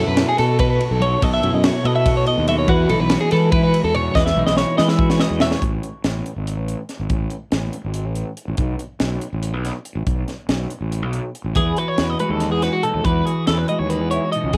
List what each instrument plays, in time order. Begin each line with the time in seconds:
Already playing: clean electric guitar B2 E4 A4
0.07 fingered electric bass F#2, clean electric guitar B4
0.17 clean electric guitar E4, snare, ride
0.27 clean electric guitar F#4 G#4
0.37 fingered electric bass B2, clean electric guitar B3 A4, snare, ride
0.59 clean electric guitar F#4 B4, kick, snare, ride
0.70 clean electric guitar B4
0.81 ride
0.91 fingered electric bass B1, clean electric guitar A4
1.00 clean electric guitar F#3 A4 C#5, ride
1.21 fingered electric bass B1, clean electric guitar B2 A4 D#5, kick, ride
1.34 clean electric guitar E5
1.43 fingered electric bass F#2, clean electric guitar E4, ride
1.53 fingered electric bass F#2, clean electric guitar D#5
1.64 clean electric guitar F#4 C#5, snare, ride
1.85 fingered electric bass B2, clean electric guitar B3 A4 D#5, ride
1.96 clean electric guitar E5
2.06 clean electric guitar F#4, kick, snare, ride
2.17 clean electric guitar C#5
2.26 clean electric guitar D#5, ride
2.38 fingered electric bass D#2
2.48 clean electric guitar F#3 A4 E5, ride
2.58 clean electric guitar C#5
2.68 fingered electric bass E2, clean electric guitar E3 F#4 B4, kick, ride
2.89 fingered electric bass B1, clean electric guitar D#4 A4, ride
3.00 fingered electric bass B1, clean electric guitar B4
3.10 clean electric guitar F#4, snare, ride
3.21 clean electric guitar G#4
3.31 fingered electric bass E3, clean electric guitar G#3 A4 B4, snare, ride
3.52 clean electric guitar E4 B4, kick, ride
3.63 clean electric guitar F#4 B4
3.74 ride
3.84 fingered electric bass E2, clean electric guitar A4
3.95 clean electric guitar B2 C#5, ride
4.15 fingered electric bass E2, clean electric guitar E3 B4 D#5, kick, snare
4.26 clean electric guitar E5, snare
4.36 fingered electric bass B1, clean electric guitar D#4
4.47 fingered electric bass B1, clean electric guitar D#5, snare
4.57 clean electric guitar F#4 C#5, snare
4.78 fingered electric bass E3, clean electric guitar G#3 B4 D#5, snare
4.88 clean electric guitar E5, snare
4.99 clean electric guitar F#4, kick
5.10 clean electric guitar C#5, snare
5.20 clean electric guitar D#5, snare
5.30 fingered electric bass E2
5.40 clean electric guitar B2 C#5 E5, snare
5.51 clean electric guitar C#5, snare
5.62 fingered electric bass A1, kick, closed hi-hat
5.83 closed hi-hat
6.04 fingered electric bass A1, snare, closed hi-hat
6.26 closed hi-hat
6.36 fingered electric bass G#1
6.47 closed hi-hat
6.58 fingered electric bass A1
6.68 closed hi-hat
6.89 snare, closed hi-hat
6.99 fingered electric bass G#1
7.10 fingered electric bass A1, kick, closed hi-hat
7.30 closed hi-hat
7.52 fingered electric bass A1, snare, closed hi-hat
7.73 closed hi-hat
7.84 fingered electric bass G#1
7.94 closed hi-hat
8.06 fingered electric bass A1
8.15 closed hi-hat
8.37 closed hi-hat
8.48 fingered electric bass A1
8.57 fingered electric bass B1, kick, closed hi-hat
8.79 closed hi-hat
9.00 fingered electric bass B1, snare, closed hi-hat
9.21 closed hi-hat
9.33 fingered electric bass A1
9.43 closed hi-hat
9.54 fingered electric bass B1
9.65 snare, closed hi-hat
9.85 closed hi-hat
9.95 fingered electric bass A1
10.07 fingered electric bass B1, kick, closed hi-hat
10.28 snare, closed hi-hat
10.49 fingered electric bass B1, snare, closed hi-hat
10.70 closed hi-hat
10.81 fingered electric bass A1
10.92 closed hi-hat
11.02 fingered electric bass B1
11.13 closed hi-hat
11.35 closed hi-hat
11.44 fingered electric bass A1
11.55 fingered electric bass E2, clean electric guitar E3 G#4 B4, kick, closed hi-hat
11.77 clean electric guitar F#4 B4, closed hi-hat
11.88 clean electric guitar C#5
11.98 fingered electric bass E2, clean electric guitar B4, snare, closed hi-hat
12.10 clean electric guitar D#5
12.19 clean electric guitar G#3 F#4 B4, closed hi-hat
12.30 fingered electric bass D#2, clean electric guitar A4
12.40 clean electric guitar D#4, snare, closed hi-hat
12.51 fingered electric bass E2, clean electric guitar G#4
12.62 clean electric guitar F#4 B4, snare, closed hi-hat
12.73 clean electric guitar F#4
12.83 clean electric guitar B2 D#4 A4, closed hi-hat
12.94 fingered electric bass D#2
13.04 fingered electric bass E2, clean electric guitar E3 B4, kick, closed hi-hat
13.26 clean electric guitar F#4 G#4, closed hi-hat
13.47 fingered electric bass E2, clean electric guitar A4 B4, snare, closed hi-hat
13.58 clean electric guitar B4
13.68 clean electric guitar G#3 F#4 D#5, closed hi-hat
13.79 fingered electric bass D#2, clean electric guitar C#5
13.90 clean electric guitar D#4 B4, closed hi-hat
14.01 fingered electric bass E2
14.11 clean electric guitar E4 C#5, closed hi-hat
14.24 clean electric guitar F#4
14.32 clean electric guitar B2 D#4 D#5, closed hi-hat
14.44 fingered electric bass C#2
14.53 fingered electric bass F#2, clean electric guitar G#4, kick, closed hi-hat